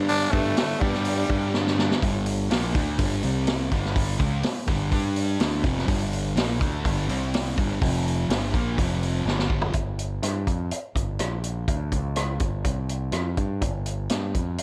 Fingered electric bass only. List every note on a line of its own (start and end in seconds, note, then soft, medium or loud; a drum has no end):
0.00 0.26 G2 medium
0.33 0.54 G2 loud
0.82 1.23 G2 medium
1.29 1.92 G2 medium
2.02 2.47 G1 medium
2.51 2.73 A#1 medium
2.75 2.97 D2 medium
2.99 3.21 G1 medium
3.24 3.68 C2 medium
3.72 4.17 G1 medium
4.20 4.42 C#2 loud
4.45 muted fingered electric bass stroke soft
4.68 4.90 G1 medium
4.92 5.36 G2 medium
5.41 5.63 D2 medium
5.64 5.86 F1 medium
5.88 6.33 G1 medium
6.36 6.58 A#1 medium
6.61 6.83 D2 medium
6.84 7.07 G1 medium
7.09 7.53 C2 medium
7.58 7.80 G1 medium
7.82 8.26 F1 medium
8.29 8.52 G1 medium
8.53 8.76 A#1 loud
8.79 9.23 F1 medium
9.25 9.71 G1 medium
9.74 10.19 G1 medium
10.23 10.45 G2 medium
10.48 10.70 F2 medium
10.72 muted fingered electric bass stroke soft
10.95 11.18 G1 medium
11.20 11.65 A#1 medium
11.68 11.91 D2 medium
11.92 12.38 C#2 medium
12.41 12.63 G1 medium
12.64 13.10 C2 medium
13.12 13.36 F2 medium
13.38 13.61 G2 medium
13.61 14.07 G1 medium
14.11 14.34 G2 medium
14.35 14.57 F2 medium
14.58 muted fingered electric bass stroke soft